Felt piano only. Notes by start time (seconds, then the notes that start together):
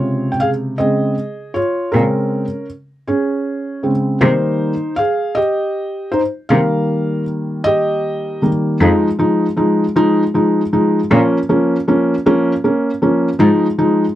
Already playing: C3 C#3 G#3 F4 C#5
0.32 G5
0.40 G#4 F5
0.78 C#3 G#3 C4 G#4 D#5
1.54 F4 C#5
1.92 C#3 G#3 C4 C#4 A#4
3.08 C#4 G#4
3.83 C#3 G#3 C4
4.21 D#3 G3 A#3 D#4 C5
4.96 G#4 F5
5.35 G4 D#5
6.12 D#4 C5
6.49 D#3 G3 A#3 A#4 F5
7.64 G4 D#5
8.42 D#3 G3 A#3
8.81 F3 G#3 D#4
9.19 F3 G#3 D#4
9.57 F3 G#3 D#4
9.96 F3 G#3 D#4
10.34 F3 G#3 D#4
10.73 F3 G#3 D#4
11.11 F3 A#3 C#4
11.49 F3 A#3 C#4
11.88 F3 A#3 C#4
12.26 F3 A#3 C#4
12.64 A#3 C#4
13.02 F3 A#3 C#4
13.39 F3 G#3 D#4
13.78 F3 G#3 D#4